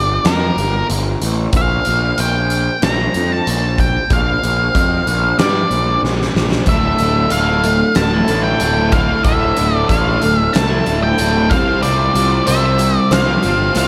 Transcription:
Already playing: picked electric bass G1, lead electric guitar D5
0.25 picked electric bass F2, lead electric guitar A#4, snare, closed hi-hat
0.57 picked electric bass G1, closed hi-hat
0.90 picked electric bass G1, closed hi-hat
1.22 picked electric bass A1, closed hi-hat
1.53 picked electric bass A#1, kick, closed hi-hat
1.57 lead electric guitar F5
1.85 picked electric bass A#1, closed hi-hat
2.18 picked electric bass A#1, lead electric guitar G5, closed hi-hat
2.50 closed hi-hat
2.82 picked electric bass A#1, lead electric guitar A#5, snare, closed hi-hat
3.14 picked electric bass F2, closed hi-hat
3.32 lead electric guitar A5
3.47 picked electric bass A#1, closed hi-hat
3.78 lead electric guitar G5, kick, closed hi-hat
4.10 picked electric bass A#1, lead electric guitar F5, kick, closed hi-hat
4.44 picked electric bass A#1, closed hi-hat
4.75 picked electric bass F2, kick, closed hi-hat
5.07 picked electric bass A#1, closed hi-hat
5.39 picked electric bass G2, lead electric guitar D5, snare, closed hi-hat
5.71 picked electric bass A#1, closed hi-hat
6.03 picked electric bass A#1, snare
6.22 snare
6.35 picked electric bass A#1, snare
6.51 snare
6.66 picked electric bass D1, overdriven electric guitar D2 A2 D3 A3, lead electric guitar E5, kick, closed hi-hat
6.71 overdriven electric guitar E4
6.99 picked electric bass D1, overdriven electric guitar A2 D3 A3, closed hi-hat
7.03 overdriven electric guitar E4
7.30 picked electric bass D1, overdriven electric guitar D2 A2 D3 A3, lead electric guitar F5, closed hi-hat
7.34 overdriven electric guitar E4
7.49 overdriven electric guitar D3 A3 E4
7.64 steel-string acoustic guitar A3, muted overdriven electric guitar stroke, closed hi-hat
7.95 picked electric bass D1, lead electric guitar A5, snare, closed hi-hat
8.14 overdriven electric guitar D3 A3 E4
8.28 picked electric bass A1, overdriven electric guitar A2 D3 A3, closed hi-hat
8.33 overdriven electric guitar E4
8.44 lead electric guitar G5
8.60 picked electric bass D1, overdriven electric guitar D2 A2 D3 A3 E4, closed hi-hat
8.78 overdriven electric guitar D3 A3 E4
8.92 overdriven electric guitar A2 D3 A3 E4, lead electric guitar F5, kick, closed hi-hat
9.11 overdriven electric guitar D3 A3 E4
9.24 picked electric bass D1, overdriven electric guitar D2 A2 D3 A3 E4, lead electric guitar E5, kick, closed hi-hat
9.57 picked electric bass D1, overdriven electric guitar A2 D3 A3 E4, closed hi-hat
9.76 lead electric guitar D5
9.89 picked electric bass A1, overdriven electric guitar D2 A2 D3 A3 E4, lead electric guitar F5, kick, closed hi-hat
10.06 overdriven electric guitar D3 A3 E4
10.22 picked electric bass D1, steel-string acoustic guitar A3, muted overdriven electric guitar stroke, closed hi-hat
10.36 lead electric guitar E5
10.53 picked electric bass C2, steel-string acoustic guitar E4, lead electric guitar A5, snare, closed hi-hat
10.71 overdriven electric guitar D3 A3 E4
10.85 picked electric bass D1, overdriven electric guitar A2 D3 A3 E4, closed hi-hat
11.03 lead electric guitar G5
11.18 picked electric bass D1, overdriven electric guitar D2 A2 D3 A3 E4, closed hi-hat
11.33 overdriven electric guitar D3 A3 E4
11.50 picked electric bass C2, overdriven electric guitar C3 G3 C4 F4 G4 C5, lead electric guitar F5, kick, closed hi-hat
11.67 overdriven electric guitar C4 F4 G4 C5
11.83 picked electric bass C2, overdriven electric guitar C3 G3 C4 F4 G4 C5, lead electric guitar D5, closed hi-hat
12.15 picked electric bass C2, overdriven electric guitar C4 F4 G4 C5, closed hi-hat
12.47 picked electric bass C2, overdriven electric guitar C3 G3 C4 F4 G4 C5, lead electric guitar E5, closed hi-hat
12.64 overdriven electric guitar C4 F4 G4 C5
12.78 steel-string acoustic guitar G4, muted overdriven electric guitar stroke, closed hi-hat
12.98 lead electric guitar D5
13.11 picked electric bass C2, steel-string acoustic guitar C5, lead electric guitar F5, snare, closed hi-hat
13.27 overdriven electric guitar C4 F4 G4 C5
13.43 picked electric bass G1, overdriven electric guitar C4 F4 G4 C5, closed hi-hat
13.75 picked electric bass C2, overdriven electric guitar C3 G3 C4 F4 G4 C5, lead electric guitar F5, closed hi-hat

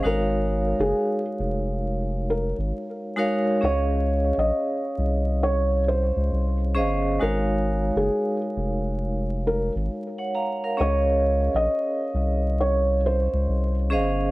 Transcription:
0.03 sub bass G#1, vibraphone G#3 D#4 F#4 A#4 C#5 F5, felt piano A#4
0.79 sub bass F#1, felt piano G#4
1.39 sub bass F1
2.30 felt piano A#4
2.58 sub bass G#1
3.16 vibraphone G#3 D#4 F#4 A#4 C#5 F5
3.61 sub bass C#2, vibraphone C#4 G#4 C#5 D#5 F5, felt piano C#5
4.37 sub bass A#1, felt piano D#5
4.98 sub bass C2
5.43 felt piano C#5
5.88 felt piano C5
6.16 sub bass C#2
6.32 sub bass C2
6.74 sub bass G1, vibraphone C#4 G#4 C5 D#5 F5
7.19 sub bass G#1, vibraphone G#3 D#4 F#4 A#4 C#5 F5, felt piano A#4
7.95 sub bass F#1, felt piano G#4
8.56 sub bass F1
9.47 felt piano A#4
9.75 sub bass G#1
10.18 vibraphone C#5 F#5
10.35 vibraphone F5 A#5
10.64 vibraphone A#4 F5
10.77 sub bass C#2, vibraphone C#4 G#4 C#5 D#5 F5, felt piano C#5
11.54 sub bass A#1, felt piano D#5
12.14 sub bass C2
12.61 felt piano C#5
13.06 felt piano C5
13.33 sub bass C#2
13.48 sub bass C2
13.90 sub bass G1, vibraphone C#4 G#4 C5 D#5 F5

